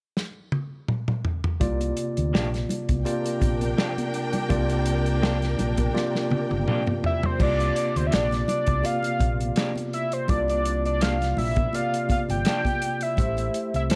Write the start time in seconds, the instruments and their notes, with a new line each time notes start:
0.17 snare
0.52 high tom
0.88 mid tom
1.08 mid tom
1.25 floor tom
1.44 floor tom
1.60 fingered electric bass C2, tine electric piano C3 A#3 F4 D5, kick, closed hi-hat, low conga
1.81 closed hi-hat, muted conga
1.97 closed hi-hat
2.17 fingered electric bass D2, closed hi-hat
2.33 fingered electric bass A#1, clean electric guitar F3 A#3 D4 G4, snare
2.54 snare, closed hi-hat
2.69 closed hi-hat, low conga
2.89 fingered electric bass C2, kick, closed hi-hat, high conga
3.05 tine electric piano C3 A#3 F4 D5, string section D4 A#4 G5, closed hi-hat, muted conga
3.24 closed hi-hat, muted conga
3.41 fingered electric bass A#1, kick, closed hi-hat, high conga
3.61 closed hi-hat, high conga
3.78 clean electric guitar F3 A#3 D4 G4, snare
3.98 closed hi-hat, muted conga, high conga
4.14 closed hi-hat
4.33 closed hi-hat, low conga
4.49 fingered electric bass C2, tine electric piano C3 A#3 F4 D5, kick, closed hi-hat, low conga
4.69 closed hi-hat
4.86 closed hi-hat
5.06 closed hi-hat
5.22 clean electric guitar F3 A#3 D4 G4, snare
5.42 snare, closed hi-hat, muted conga
5.59 fingered electric bass A#1, closed hi-hat, low conga
5.77 kick, closed hi-hat, high conga
5.94 tine electric piano C3 A#3 F4 D5, snare, muted conga
6.15 snare
6.31 muted fingered electric bass stroke, high tom, high conga
6.50 fingered electric bass G1, high tom, high conga
6.67 clean electric guitar F3 A#3 D4 G4, mid tom
6.87 mid tom, muted conga, high conga
7.04 analog synth lead E5, floor tom
7.23 analog synth lead C5, floor tom, low conga
7.38 fingered electric bass C2, tine electric piano C3 A#3 F4 D5, kick, crash, muted conga, low conga
7.43 analog synth lead D5
7.59 analog synth lead D5, closed hi-hat, muted conga
7.76 closed hi-hat
7.96 fingered electric bass D2, analog synth lead C5, closed hi-hat
8.07 analog synth lead E5
8.11 fingered electric bass A#1, clean electric guitar F3 A#3 D4 G4, analog synth lead D5, snare, closed hi-hat, muted conga
8.31 snare, closed hi-hat, muted conga
8.48 analog synth lead D5, closed hi-hat, low conga
8.66 fingered electric bass C2, kick, closed hi-hat, high conga
8.83 tine electric piano C3 A#3 F4 D5, analog synth lead F5, closed hi-hat, muted conga
9.03 closed hi-hat, muted conga
9.20 fingered electric bass A#1, kick, closed hi-hat, high conga
9.40 closed hi-hat, high conga
9.56 clean electric guitar F3 A#3 D4 G4, snare, closed hi-hat, muted conga
9.76 closed hi-hat, muted conga, high conga
9.93 analog synth lead E5, closed hi-hat
10.12 analog synth lead C5, closed hi-hat
10.28 fingered electric bass C2, tine electric piano C3 A#3 F4 D5, analog synth lead D5, kick, closed hi-hat, muted conga, low conga
10.48 analog synth lead D5, closed hi-hat, muted conga
10.65 closed hi-hat
10.86 analog synth lead D5, closed hi-hat
11.00 clean electric guitar F3 A#3 D4 G4, analog synth lead F5, snare, closed hi-hat
11.21 snare, closed hi-hat, muted conga
11.37 fingered electric bass A#1, analog synth lead E5, open hi-hat, low conga
11.56 kick, closed hi-hat, high conga
11.73 tine electric piano C3 A#3 F4 D5, analog synth lead F5, closed hi-hat, muted conga
11.94 closed hi-hat
12.09 analog synth lead F5, kick, closed hi-hat, high conga
12.29 fingered electric bass G1, analog synth lead G5, closed hi-hat, high conga
12.45 clean electric guitar F3 A#3 D4 G4, snare, closed hi-hat
12.65 kick, closed hi-hat, muted conga, high conga
12.82 closed hi-hat
13.01 analog synth lead E5, closed hi-hat
13.17 fingered electric bass A1, tine electric piano A3 E4 G4 C5, kick, closed hi-hat, low conga
13.37 closed hi-hat, muted conga
13.54 closed hi-hat
13.74 fingered electric bass C2, analog synth lead E5, closed hi-hat
13.90 fingered electric bass A1, clean electric guitar G3 C4 E4 A4, analog synth lead C5, snare, closed hi-hat, muted conga